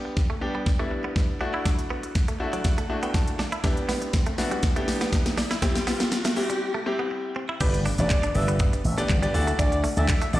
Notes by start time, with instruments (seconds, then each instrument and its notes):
Already playing: grand piano G3 B3 D4 G4, riser
0.05 muted clean electric guitar stroke
0.17 kick, snare
0.30 clean electric guitar A3
0.41 grand piano G3 B3 D4 G4, muted clean electric guitar stroke
0.55 clean electric guitar G3
0.66 kick, snare
0.79 grand piano G3 B3 D4 E4, clean electric guitar A3
0.91 muted clean electric guitar stroke
1.04 clean electric guitar B3
1.16 muted clean electric guitar stroke, kick, snare
1.41 grand piano A3 D4 E4 F#4, clean electric guitar D4
1.54 clean electric guitar E4
1.65 clean electric guitar D4, kick, snare, closed hi-hat
1.79 closed hi-hat
1.90 clean electric guitar B3
2.03 muted clean electric guitar stroke, closed hi-hat
2.15 kick, snare, closed hi-hat
2.28 clean electric guitar A3, closed hi-hat
2.40 grand piano A3 D4 E4 F#4 E5, muted clean electric guitar stroke
2.53 clean electric guitar F#3, grand piano D5, closed hi-hat
2.64 grand piano F#5, kick, snare, closed hi-hat
2.78 clean electric guitar A3, closed hi-hat
2.89 grand piano A3 D4 E4 F#4, muted clean electric guitar stroke
3.03 clean electric guitar B3, grand piano G5, closed hi-hat
3.14 grand piano A5, muted clean electric guitar stroke, kick, snare, closed hi-hat
3.28 closed hi-hat
3.39 clean electric guitar D4, snare
3.52 clean electric guitar E4, closed hi-hat
3.63 grand piano B3 D4 E4 G4, clean electric guitar D4, kick, snare, closed hi-hat
3.77 closed hi-hat
3.89 clean electric guitar B3, snare, open hi-hat
4.02 muted clean electric guitar stroke, closed hi-hat
4.13 kick, snare, closed hi-hat
4.26 clean electric guitar A3, closed hi-hat
4.38 grand piano B3 D4 E4 F#4, muted clean electric guitar stroke, snare, open hi-hat
4.51 clean electric guitar G3, closed hi-hat
4.63 kick, snare, closed hi-hat
4.76 clean electric guitar A3, grand piano B3 D4 E4 G4, closed hi-hat
4.88 muted clean electric guitar stroke, snare, open hi-hat
5.01 clean electric guitar B3, snare, closed hi-hat
5.13 muted clean electric guitar stroke, kick, snare, closed hi-hat
5.26 snare, closed hi-hat
5.38 clean electric guitar D4, snare, open hi-hat
5.51 clean electric guitar E4, snare, closed hi-hat
5.62 grand piano G3 C4 E4 G4, clean electric guitar C4, kick, snare, closed hi-hat, shaker
5.75 snare, closed hi-hat, shaker
5.87 clean electric guitar B3, snare, open hi-hat, shaker
6.00 muted clean electric guitar stroke, snare, closed hi-hat, shaker
6.12 snare, closed hi-hat, shaker
6.25 clean electric guitar A3, snare, closed hi-hat, shaker
6.36 grand piano G3 C4 E4 G4, muted clean electric guitar stroke, open hi-hat, shaker
6.50 clean electric guitar G3, closed hi-hat, shaker
6.74 clean electric guitar A3
6.86 grand piano G3 C4 E4 G4, muted clean electric guitar stroke
6.99 clean electric guitar B3
7.11 muted clean electric guitar stroke
7.36 clean electric guitar C4
7.49 clean electric guitar E4
7.60 slap bass G1, grand piano B3 D4 G4 B4 D5, clean electric guitar G4, analog synth lead B4, kick, closed hi-hat, crash, impact, shaker
7.74 muted clean electric guitar stroke, closed hi-hat, shaker
7.85 clean electric guitar D4, open hi-hat, shaker
7.98 slap bass A1, grand piano B3 D4 G4 B4 D5, analog synth lead D5, closed hi-hat, shaker
8.10 analog synth lead D5, kick, clap, closed hi-hat, shaker
8.23 clean electric guitar D4, closed hi-hat, shaker
8.35 slap bass G1, grand piano B3 D4 G4 B4 D5, analog synth lead E5, muted clean electric guitar stroke, open hi-hat, shaker
8.48 clean electric guitar B3, closed hi-hat, shaker
8.59 clean electric guitar B3, kick, closed hi-hat, shaker
8.73 muted clean electric guitar stroke, closed hi-hat, shaker
8.85 slap bass A1, open hi-hat, shaker
8.97 clean electric guitar A3, grand piano B3 D4 G4 B4 D5, closed hi-hat, shaker
9.09 slap bass G1, kick, clap, closed hi-hat, shaker
9.22 clean electric guitar G3, grand piano B3 D4 G4 B4 D5, closed hi-hat, shaker
9.34 slap bass D2, grand piano D4 E4 F#4 A4 D5, muted clean electric guitar stroke, open hi-hat, shaker
9.47 clean electric guitar A3, closed hi-hat, shaker
9.59 slap bass D2, clean electric guitar D4, analog synth lead D5, kick, closed hi-hat, shaker
9.72 muted clean electric guitar stroke, closed hi-hat, shaker
9.84 clean electric guitar A3, open hi-hat, shaker
9.97 slap bass D2, grand piano D4 E4 F#4 A4 D5, analog synth lead E5, closed hi-hat, shaker
10.09 analog synth lead E5, kick, clap, closed hi-hat, shaker
10.21 clean electric guitar A3, closed hi-hat, shaker
10.33 slap bass A1, grand piano D4 E4 F#4 A4 D5, analog synth lead D5, muted clean electric guitar stroke, open hi-hat, shaker